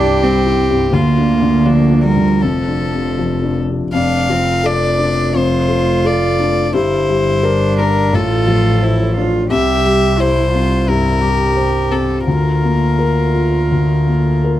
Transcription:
Already playing: double bass C2, felt piano C2 G3 E4, cello D4, violin G4
0.00 felt piano G2
0.23 felt piano G3, cello C4
0.47 felt piano E4
0.69 felt piano G2
0.93 felt piano D2, double bass D2, cello A#3, violin F4
1.18 felt piano D4
1.42 felt piano D3
1.65 felt piano F3, violin D4
1.91 felt piano D4
2.03 cello G3, violin A#4
2.17 felt piano D3
2.42 double bass F1, felt piano F2, cello F3, violin A4
2.68 felt piano D4
2.93 felt piano C3
3.19 felt piano F3
3.43 felt piano D4
3.69 felt piano C3
3.93 double bass F1, felt piano F2, cello D4, violin F5
4.29 felt piano F3, cello C4
4.64 cello D4, felt piano A4, violin D5
4.99 felt piano D4
5.33 felt piano F2, cello F4, violin C5
5.68 felt piano A3
6.05 felt piano A4, violin D5
6.40 felt piano D4
6.74 double bass G1, felt piano G2, cello E4, violin C5
7.09 felt piano G3
7.43 cello D4, felt piano A#4
7.79 felt piano D4, violin A#4
8.13 double bass A1, felt piano A2, cello F4, violin A4
8.47 felt piano F3
8.83 cello E4, felt piano C5
9.17 felt piano D4, cello F4
9.50 felt piano C2, double bass C2, cello G4, violin E5
9.86 felt piano G3
10.18 cello E4, felt piano C5, violin C5
10.53 felt piano C4, cello F4
10.87 felt piano G2, cello E4, violin A#4
11.21 felt piano G3, cello G4
11.57 felt piano C5
11.91 felt piano C4, violin A4
12.27 double bass D2, felt piano D2, cello F4, violin A#4
12.64 felt piano A#3
12.99 felt piano A#4
13.35 felt piano F4
13.71 felt piano D2
14.07 felt piano A#3
14.44 felt piano A#4

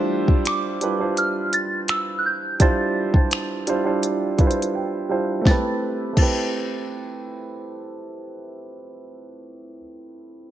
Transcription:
Already playing: clean electric guitar E3 A3 D4 G4, grand piano G3 D4 E4 F4 C5
0.28 kick
0.45 synth bell D6, finger snap, closed hi-hat
0.81 grand piano G3 D4 E4 F4 B4, closed hi-hat
0.99 grand piano G3 D4 E4 F4 C5
1.17 synth bell F6, closed hi-hat
1.53 synth bell A6, closed hi-hat
1.88 synth bell E6, finger snap, closed hi-hat
2.19 synth bell F#6
2.26 synth bell G6
2.60 grand piano G3 D4 E4 F4 C5, synth bell A6, kick, closed hi-hat
3.13 grand piano G3 D4 E4 F4 C5, kick
3.31 finger snap, closed hi-hat
3.67 grand piano G3 D4 E4 F4 C5, closed hi-hat
3.84 grand piano G3 D4 E4 F4 C5
4.03 closed hi-hat
4.38 grand piano G3 D4 E4 F4 B4, kick, closed hi-hat
4.47 grand piano C5, closed hi-hat
4.62 closed hi-hat
4.75 grand piano G5
5.09 grand piano G3 D4 E4 F4 C5
5.41 grand piano A3 C4
5.45 grand piano E4 G4, synth bell A6, kick, snare
5.51 grand piano B4
6.13 grand piano A3 C4
6.17 grand piano E4 G4, synth bell A6, kick, crash
6.22 grand piano B4

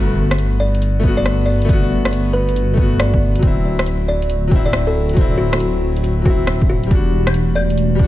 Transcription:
Already playing: detuned saw bass G1, upright piano A3 B3
0.00 upright piano F#4
0.31 cross-stick, closed hi-hat
0.38 closed hi-hat
0.60 kalimba D5
0.74 ambient pad F#4, closed hi-hat
0.82 closed hi-hat
0.99 upright piano A3, kick
1.03 upright piano B3
1.08 upright piano F#4
1.17 kalimba D5
1.26 cross-stick, closed hi-hat
1.46 kalimba D5
1.62 upright piano A3, closed hi-hat
1.69 upright piano B3, kick, closed hi-hat
1.73 upright piano F#4
2.05 cross-stick, closed hi-hat
2.13 closed hi-hat
2.33 kalimba B4
2.49 closed hi-hat
2.56 closed hi-hat
2.73 upright piano A3, kick
2.78 upright piano B3
2.82 upright piano F#4
2.99 kalimba D5, cross-stick, closed hi-hat
3.14 kick
3.35 upright piano F#3, closed hi-hat
3.42 detuned saw bass D1, upright piano C4, kick, closed hi-hat
3.47 upright piano E4
3.79 cross-stick, closed hi-hat
3.86 closed hi-hat
4.08 kalimba D5
4.22 closed hi-hat
4.30 closed hi-hat
4.47 upright piano F#3, kick
4.52 upright piano C4
4.56 upright piano E4
4.65 kalimba D5
4.73 cross-stick, closed hi-hat
4.87 kalimba A4
5.09 upright piano F#3, closed hi-hat
5.17 upright piano C4, kick, closed hi-hat
5.21 upright piano E4
5.38 kalimba F#4
5.53 cross-stick, closed hi-hat
5.60 closed hi-hat
5.96 closed hi-hat
6.04 closed hi-hat
6.22 upright piano F#3 C4, kalimba F#4, kick
6.30 upright piano E4
6.47 cross-stick, closed hi-hat
6.62 kick
6.69 kalimba F#4
6.83 upright piano G3, closed hi-hat
6.91 detuned saw bass E1, ambient pad E3, upright piano D4, kick, closed hi-hat
6.95 upright piano F#4
7.08 ambient pad A3
7.27 cross-stick, closed hi-hat, claves
7.34 closed hi-hat
7.46 ambient pad D4
7.55 kalimba D5, claves
7.70 closed hi-hat
7.78 closed hi-hat
7.95 upright piano G3 D4
7.99 upright piano F#4, kick

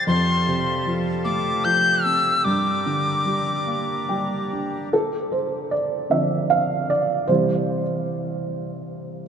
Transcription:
Already playing: accordion G3 F4
0.07 felt piano F2, accordion A4, tin whistle C6
0.47 felt piano C3
0.86 felt piano F3
1.25 felt piano A3, tin whistle D6
1.64 felt piano F3, tin whistle G6
2.04 felt piano C4, tin whistle E6
2.43 felt piano G2, accordion D4 A#4, tin whistle D6
2.86 felt piano D3
3.26 felt piano G3
3.67 felt piano A#3
4.09 felt piano G3 G5
4.53 felt piano D4
4.93 felt piano A4
5.32 felt piano C5
5.71 felt piano D5
6.10 felt piano D3 F3 C4 E5
6.50 felt piano F5
6.90 felt piano D5
7.28 felt piano C3 E3 G3 C5

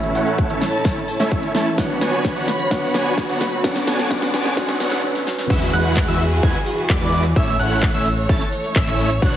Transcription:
Already playing: analog synth bass A1, felt piano A2 E3 A3 C#4 E4, supersaw synth A3 C#4 E4 C#5 E5, string section E4 A4 C#5 A5, riser
0.03 closed hi-hat
0.15 analog synth bass A1, supersaw synth A3 C#4 E4 C#5 F#5, open hi-hat
0.27 closed hi-hat
0.38 kick, closed hi-hat
0.50 analog synth bass A1, supersaw synth A3 C#4 E4 C#5 E5, closed hi-hat
0.62 snare, open hi-hat
0.73 closed hi-hat
0.85 analog synth bass A1, supersaw synth A3 C#4 E4 C#5 A5, kick, snare, closed hi-hat
0.97 closed hi-hat
1.08 open hi-hat
1.20 analog synth bass A1, supersaw synth A3 C#4 E4 C#5 E5, snare, closed hi-hat
1.31 kick, closed hi-hat
1.43 closed hi-hat
1.54 analog synth bass A1, felt piano E3 A3 C#4 E4, supersaw synth A3 C#4 E4 C#5 A5, snare, open hi-hat
1.66 closed hi-hat
1.77 analog synth bass B1, felt piano D3 F#3 B3 C#5, supersaw synth B3 D4 F#4 C#5 F#5, string section F#4 C#5 B5, kick, snare, closed hi-hat
1.90 closed hi-hat
2.01 analog synth bass B1, supersaw synth B3 D4 F#4 C#5 G#5, snare, open hi-hat
2.13 closed hi-hat
2.25 kick, snare, closed hi-hat
2.36 analog synth bass B1, supersaw synth B3 D4 F#4 C#5 F#5, closed hi-hat
2.48 snare, open hi-hat
2.59 closed hi-hat
2.70 analog synth bass B1, felt piano D3 F#3 B3 C#5, supersaw synth B3 D4 F#4 C#5 F#5, kick, snare, closed hi-hat
2.83 closed hi-hat
2.94 analog synth bass B1, supersaw synth B3 D4 F#4 C#5 G#5, snare, open hi-hat
3.06 closed hi-hat
3.18 kick, snare, closed hi-hat
3.29 analog synth bass B1, supersaw synth B3 D4 F#4 C#5 F#5, closed hi-hat
3.41 snare, open hi-hat
3.52 closed hi-hat
3.63 analog synth bass D2, felt piano D3 F#3 B3 C#4, supersaw synth B3 D4 F#4 C#5 F#5, string section A4 A5 D6, kick, snare, closed hi-hat
3.76 snare, open hi-hat
3.87 analog synth bass D2, supersaw synth B3 D4 F#4 C#5 G#5, snare, open hi-hat
3.99 snare, closed hi-hat
4.09 felt piano D3 F#3 B3 C#4, supersaw synth B3 D4 F#4 C#5 F#5, kick, snare, closed hi-hat
4.22 snare, closed hi-hat
4.34 analog synth bass D2, supersaw synth B3 D4 F#4 C#5 G#5, snare, open hi-hat
4.45 snare, closed hi-hat
4.56 analog synth bass D2, felt piano D3 F#3 B3 C#4, supersaw synth B3 D4 F#4 C#5 F#5, kick, snare, closed hi-hat
4.69 snare, closed hi-hat
4.79 analog synth bass D2, felt piano D3 F#3 B3 C#4, supersaw synth B3 D4 F#4 C#5 F#5, snare, open hi-hat
4.92 snare, closed hi-hat
5.02 felt piano D3 F#3 B3 C#4
5.15 snare
5.26 felt piano D3 F#3 B3 C#4, snare
5.38 snare
5.50 analog synth bass E2, string section E3 E4 F#4 G#4, supersaw synth G#3 E4 F#4 B4 E5, digital synth lead E6, kick, closed hi-hat, crash, downlifter
5.62 closed hi-hat
5.73 analog synth bass E2, supersaw synth G#3 E4 F#4 B4 F#5, digital synth lead F#6, open hi-hat
5.85 closed hi-hat
5.97 kick, clap, closed hi-hat
6.08 analog synth bass E2, supersaw synth G#3 E4 F#4 B4 E5, digital synth lead E6, closed hi-hat
6.20 open hi-hat
6.32 closed hi-hat
6.43 analog synth bass E2, supersaw synth G#3 E4 F#4 B4 G#5, digital synth lead G#6, kick, closed hi-hat
6.55 closed hi-hat
6.66 open hi-hat
6.78 closed hi-hat
6.90 analog synth bass E2, supersaw synth G#3 E4 F#4 B4 D5, digital synth lead D6, kick, clap, closed hi-hat
7.01 analog synth bass E2, supersaw synth G#3 E4 F#4 B4 D5, digital synth lead D6, closed hi-hat
7.13 open hi-hat
7.25 closed hi-hat
7.36 analog synth bass A1, supersaw synth A3 C#4 E4 C#5 E5, string section A3 C#5, digital synth lead E6, kick, closed hi-hat
7.48 closed hi-hat
7.59 analog synth bass A1, supersaw synth A3 C#4 E4 C#5 F#5, digital synth lead F#6, open hi-hat
7.71 closed hi-hat
7.83 kick, clap, closed hi-hat
7.94 analog synth bass A1, supersaw synth A3 C#4 E4 C#5 E5, digital synth lead E6, closed hi-hat
8.06 open hi-hat
8.18 closed hi-hat
8.29 analog synth bass A1, supersaw synth A3 C#4 E4 C#5 A5, digital synth lead A6, kick, closed hi-hat
8.41 closed hi-hat
8.53 open hi-hat
8.64 closed hi-hat
8.76 analog synth bass A1, supersaw synth A3 C#4 E4 C#5 E5, digital synth lead E6, kick, clap, closed hi-hat
8.87 analog synth bass A1, supersaw synth A3 C#4 E4 C#5 E5, digital synth lead E6, clap, closed hi-hat
8.99 open hi-hat
9.11 closed hi-hat
9.22 analog synth bass B1, string section D3 B3, supersaw synth B3 D4 F#4 C#5 F#5, digital synth lead F#6, kick, closed hi-hat

